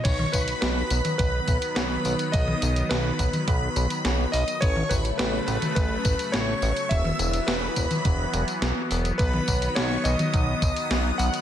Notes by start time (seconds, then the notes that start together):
0.04 B1 D#3 F#3 B3 C#5 C#6, kick, closed hi-hat, crash, tambourine
0.19 mid tom
0.32 B1 B4 B5, kick, closed hi-hat, tambourine
0.48 closed hi-hat, tambourine
0.61 B1 B4 B5, snare, closed hi-hat, tambourine
0.90 B1, closed hi-hat, tambourine
1.05 closed hi-hat, mid tom, tambourine
1.18 B1 B4 B5, kick, closed hi-hat, tambourine
1.48 B1, kick, closed hi-hat, tambourine
1.62 closed hi-hat, tambourine
1.75 B1 B4 B5, snare, closed hi-hat, tambourine
2.05 B1, open hi-hat, tambourine
2.19 closed hi-hat, tambourine
2.32 B1 D#5 D#6, kick, closed hi-hat, tambourine
2.48 mid tom
2.62 B1, closed hi-hat, tambourine
2.76 closed hi-hat, tambourine
2.89 B1 B4 B5, snare, closed hi-hat, tambourine
3.19 B1, kick, closed hi-hat, tambourine
3.33 closed hi-hat, mid tom, tambourine
3.48 B1, kick, closed hi-hat, tambourine
3.76 B1, closed hi-hat, tambourine
3.90 closed hi-hat, tambourine
4.05 B1, snare, closed hi-hat, tambourine
4.32 B1 D#5 D#6, open hi-hat, tambourine
4.48 closed hi-hat, tambourine
4.61 A1 C#3 F#3 A3 C#5 C#6, kick, closed hi-hat, tambourine
4.76 mid tom
4.89 A1 B4 B5, kick, closed hi-hat, tambourine
5.05 closed hi-hat, tambourine
5.17 A1 B4 B5, snare, closed hi-hat, tambourine
5.46 A1 B4 B5, closed hi-hat, tambourine
5.62 closed hi-hat, mid tom, tambourine
5.75 A1 B4 B5, kick, closed hi-hat, tambourine
6.05 A1, kick, closed hi-hat, tambourine
6.19 closed hi-hat, tambourine
6.32 A1 C#5 C#6, snare, closed hi-hat, tambourine
6.62 A1, open hi-hat, tambourine
6.76 closed hi-hat, tambourine
6.89 E1 E3 B3 E5 E6, kick, closed hi-hat, tambourine
7.05 mid tom
7.19 E1, closed hi-hat, tambourine
7.33 closed hi-hat, tambourine
7.46 E1 B4 B5, snare, closed hi-hat, tambourine
7.76 E1, kick, closed hi-hat, tambourine
7.91 closed hi-hat, mid tom, tambourine
8.05 E1, kick, closed hi-hat, tambourine
8.33 E1, closed hi-hat, tambourine
8.48 closed hi-hat, tambourine
8.62 B1, snare, closed hi-hat, tambourine
8.91 E1, open hi-hat, tambourine
9.05 closed hi-hat, tambourine
9.18 B1 D#3 B4 B5, kick, closed hi-hat, tambourine
9.34 mid tom
9.48 B1, kick, closed hi-hat, tambourine
9.62 closed hi-hat, tambourine
9.75 B1 C#5 C#6, snare, closed hi-hat, tambourine
10.04 B1 D#5 D#6, closed hi-hat, tambourine
10.19 closed hi-hat, mid tom, tambourine
10.34 B1, kick, closed hi-hat, tambourine
10.62 B1, kick, closed hi-hat, tambourine
10.76 closed hi-hat, tambourine
10.91 B1, snare, closed hi-hat, tambourine
11.18 B1 F#5 F#6, open hi-hat, tambourine
11.34 closed hi-hat, tambourine